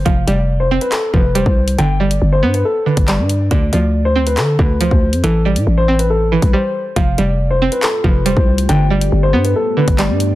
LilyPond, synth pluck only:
\new Staff \with { instrumentName = "Synth pluck" } { \clef bass \time 4/4 \key f \lydian \tempo 4 = 139 f8 g4 c'4 f8 g4 | d8 g4 b4 d8 g4 | d8 f4 c'4 d8 f4 | e8 g4 c'4 e8 g4 |
f8 g4 c'4 f8 g4 | d8 g4 b4 d8 g4 | }